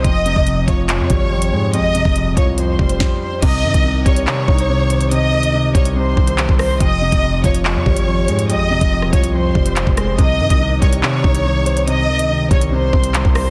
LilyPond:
<<
  \new Staff \with { instrumentName = "Violin section" } { \time 4/4 \key c \phrygian \tempo 4 = 142 <ees'' ees'''>4. <des'' des'''>8 <des'' des'''>2 | <ees'' ees'''>4. <des'' des'''>8 <c'' c'''>4. <c'' c'''>8 | <ees'' ees'''>4. <des'' des'''>8 <des'' des'''>2 | <ees'' ees'''>4. <des'' des'''>8 <c'' c'''>4. <c'' c'''>8 |
<ees'' ees'''>4. <des'' des'''>8 <des'' des'''>2 | <ees'' ees'''>4. <des'' des'''>8 <c'' c'''>4. <c'' c'''>8 | <ees'' ees'''>4. <des'' des'''>8 <des'' des'''>2 | <ees'' ees'''>4. <des'' des'''>8 <c'' c'''>4. <c'' c'''>8 | }
  \new Staff \with { instrumentName = "Ambient pad" } { \clef bass \time 4/4 \key c \phrygian << { r1 | r1 | g'1~ | g'1~ |
g'1~ | g'1~ | g'1~ | g'1 | } \\ { r1 | r1 | <c ees>1~ | <c ees>1 |
f1~ | f1 | <c ees>1~ | <c ees>1 | } >> }
  \new Staff \with { instrumentName = "Grand piano" } { \clef bass \time 4/4 \key c \phrygian f,8 c8 f,8 f8 f,8 g8 f,8 aes8 | f,8 c8 f,8 f8 f,8 g4. | c8 ees8 c8 g8 c8 ees'8 c8 c''8 | c8 ees8 c8 g8 c8 c'8 c8 c''8 |
f,8 c8 f,8 f8 f,8 g8 f,8 aes8 | f,8 c8 f,8 f8 f,8 g8 f,8 aes8 | c8 ees8 c8 g8 c8 ees'8 c8 c''8 | c8 ees8 c8 g8 c8 c'8 c8 c''8 | }
  \new Staff \with { instrumentName = "808-style bass" } { \clef bass \time 4/4 \key c \phrygian f,,8. f,,8. f,,8. f,16 aes,,4 aes,8~ | aes,32 aes,,8~ aes,,32 f,,8 ees,,16 c,4 f,,8 r4 | c,8 g,16 c,8. c,8 r8 c,4.~ | c,8 des,4 c,4 c,8. c,8. |
f,,8. f,,8. f,,8. f,16 aes,,4 aes,8~ | aes,32 aes,,8~ aes,,32 f,,8 ees,,16 c,4 f,,8. f,,8. | c,8 g,16 c,8. c,8 r8 c,4.~ | c,8 des,4 c,4 c,8. c,8. | }
  \new DrumStaff \with { instrumentName = "Drums" } \drummode { \time 4/4 <hh bd>8 hh16 bd16 hh8 <hh bd>8 <hc hh>8 <hh bd>8 r16 hh8. | hh8 hh16 bd16 hh8 <hh bd>8 hh8 bd16 hh16 <bd sn>4 | <cymc hh bd>8. <hh bd>16 r8 <hh bd>16 hh16 hc8 bd16 hh16 r8 hh16 hh16 | hh8. hh16 r8 <hh bd>16 hh16 r8 bd16 hh16 <hc hh>16 bd16 <hho ss>8 |
<hh bd>8. <hh bd>16 r8 <hh bd>16 hh16 hc8 bd16 hh16 r8 hh16 hh16 | hh8. <hh bd>16 r16 ss16 <hh bd>16 hh16 r8 bd16 hh16 <hc hh>16 bd16 <hh ss>8 | <hh bd>8. <hh bd>16 r8 <hh bd>16 hh16 hc8 bd16 hh16 r8 hh16 hh16 | hh8. hh16 r8 <hh bd>16 hh16 r8 bd16 hh16 <hc hh>16 bd16 <hho ss>8 | }
>>